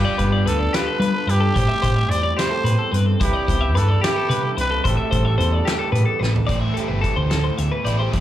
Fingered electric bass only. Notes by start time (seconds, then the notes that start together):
0.19 G2
0.45 D2
1.00 G3
1.27 G2
1.56 A2
1.84 A2
2.10 E2
2.64 A2
2.92 G2
3.20 C2
3.49 C2
3.75 G2
4.30 C3
4.57 C2
4.85 A1
5.13 A1
5.39 E2
5.92 A2
6.20 A1
6.49 A1
6.89 G1
7.17 D2
7.59 D2
7.85 A1
8.14 E2